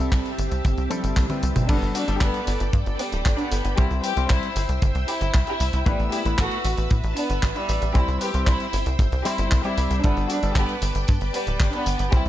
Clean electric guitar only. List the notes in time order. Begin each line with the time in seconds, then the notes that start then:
0.00 G3 C4 E4 A4
0.90 G3 C4 E4 A4
1.29 G3 C4 E4 B4
1.69 G3 B3 D4 A4
2.08 G3 B3 D4 A4
3.77 G3 C4 E4 C5
4.16 G3 C4 E4 C5
5.86 A3 B3 E4 B4
6.25 A3 B3 E4 B4
7.95 G3 C4 E4 C5
8.34 G3 C4 E4 C5
9.25 G3 C4 E4 C5
9.64 G3 C4 E4 D5
10.03 G3 B3 D4 A4
10.43 G3 B3 D4 A4
12.12 G3 C4 E4 C5